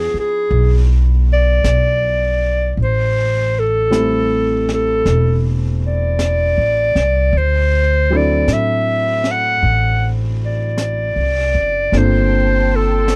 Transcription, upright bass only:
0.00 0.10 E2 medium
0.14 muted upright bass stroke soft
0.51 1.60 B1 medium
1.64 2.74 B1 medium
2.77 5.01 A1 medium
5.05 6.53 E1 medium
6.58 6.93 A1 soft
6.95 7.31 C2 medium
7.33 8.43 D2 medium
8.47 9.58 A2 medium
9.63 11.12 A1 medium
11.16 11.52 C2 soft
11.54 11.90 F#1 medium
11.92 13.16 G1 medium

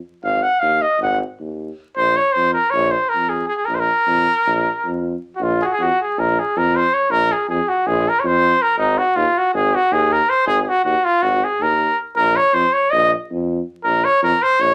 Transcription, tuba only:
0.23 0.44 G#1 medium
0.62 0.83 D#2 medium
1.00 1.22 G#1 loud
1.40 1.70 D#2 medium
1.97 2.18 A#1 medium
2.36 2.57 F2 medium
2.74 2.95 A#1 loud
3.14 3.44 F2 medium
3.68 3.89 A#1 medium
4.07 4.28 F2 medium
4.46 4.67 A#1 loud
4.85 5.15 F2 medium
5.40 5.61 A#1 loud
5.79 5.90 F2 medium
6.17 6.38 A#1 loud
6.56 6.86 F2 medium
7.10 7.31 A#1 loud
7.49 7.59 F2 loud
7.86 8.07 A#1 loud
8.24 8.54 F2 loud
8.78 8.99 G#1 loud
9.16 9.27 D#2 loud
9.54 9.75 G#1 loud
9.91 10.22 D#2 loud
10.46 10.67 G#1 loud
10.85 10.96 D#2 medium
11.22 11.43 G#1 medium
11.60 11.91 D#2 medium
12.17 12.37 A#1 loud
12.54 12.64 F2 loud
12.92 13.13 A#1 loud
13.31 13.60 F2 medium
13.84 14.05 A#1 medium
14.22 14.33 F2 loud
14.59 14.74 A#1 loud

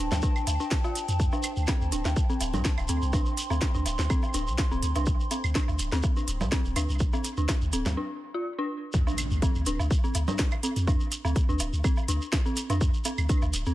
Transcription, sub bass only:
0.12 0.21 D2 medium
0.47 0.58 D2 medium
1.08 1.28 F2 medium
1.57 1.66 D2 loud
1.81 1.90 D2 medium
1.92 2.03 D1 medium
2.05 2.14 D2 medium
2.41 2.55 D1 medium
2.54 2.63 C2 medium
2.78 2.87 D1 loud
2.89 3.00 D2 medium
3.02 3.22 C2 medium
3.50 3.60 D2 loud
3.75 3.84 D2 medium
3.86 3.97 D1 medium
3.99 4.08 D2 medium
4.34 4.49 D1 medium
4.47 4.56 C2 medium
4.71 4.81 D1 medium
4.83 4.93 D2 medium
4.96 5.15 C2 medium
5.44 5.53 D2 loud
5.68 5.77 D2 medium
5.79 5.90 D1 medium
5.92 6.02 D2 medium
6.28 6.42 D1 medium
6.41 6.50 C2 medium
6.65 6.74 D1 loud
6.76 6.87 D2 medium
6.89 7.09 C2 medium
7.37 7.47 D2 loud
7.62 7.71 D2 medium
7.73 7.84 D1 medium
7.86 7.95 D2 medium
9.31 9.40 D2 loud
9.55 9.64 D2 medium
9.66 9.77 D1 medium
9.79 9.89 D2 medium
10.15 10.26 D2 medium
10.76 10.96 F2 medium
11.25 11.34 D2 loud
11.49 11.58 D2 medium
11.60 11.71 D1 medium
11.73 11.82 D2 medium
12.08 12.19 D2 medium
12.70 12.89 F2 medium
13.18 13.27 D2 loud
13.42 13.52 D2 medium
13.53 13.64 D1 medium
13.66 13.74 D2 medium

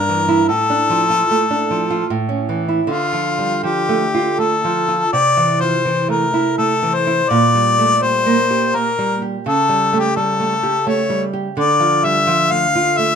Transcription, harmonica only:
0.00 0.48 A#4 medium
0.49 2.06 A4 medium
2.87 3.59 F4 medium
3.63 4.41 G4 medium
4.39 5.12 A4 medium
5.13 5.63 D5 medium
5.61 6.10 C5 medium
6.10 6.57 A#4 medium
6.58 6.96 A4 medium
6.95 7.31 C5 medium
7.30 8.04 D5 medium
8.03 8.77 C5 medium
8.76 9.22 A#4 medium
9.47 10.01 A4 medium
9.99 10.16 G4 medium
10.16 10.89 A4 medium
10.88 11.23 C#5 medium
11.58 12.06 D5 medium
12.05 12.53 E5 medium
12.51 12.99 F5 medium
12.97 13.15 E5 medium

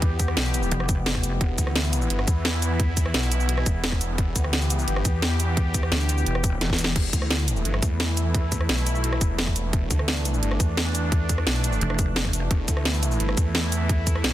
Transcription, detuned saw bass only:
0.00 0.35 E2 medium
0.37 0.70 B1 loud
1.41 1.57 E1 loud
1.58 2.09 D2 loud
2.10 2.26 G1 loud
2.28 3.13 E2 loud
3.14 3.65 B1 loud
3.66 4.17 E1 loud
4.18 4.34 E1 loud
4.36 4.86 D2 loud
4.88 5.04 G1 loud
5.05 5.90 E2 loud
6.96 7.12 E1 medium
7.13 7.64 D2 loud
7.65 7.81 G1 loud
7.82 8.68 E2 loud
8.69 9.20 B1 loud
9.21 9.72 E1 loud
9.73 9.89 E1 loud
9.90 10.41 D2 loud
10.42 10.58 G1 loud
10.60 11.45 E2 loud
11.47 11.80 B1 loud
12.51 12.67 E1 loud
12.68 13.19 D2 loud
13.20 13.36 G1 loud
13.37 14.23 E2 loud
14.24 14.33 B1 loud

